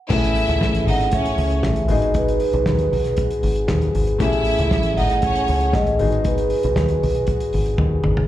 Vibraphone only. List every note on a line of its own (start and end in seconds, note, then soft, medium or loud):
0.14 0.91 E5 loud
0.89 1.15 F#5 loud
1.14 1.93 E5 loud
1.91 2.17 D#5 loud
2.17 3.15 B4 medium
4.22 5.00 E5 loud
4.97 5.77 F#5 loud
5.74 6.27 D#5 loud
6.26 7.24 B4 medium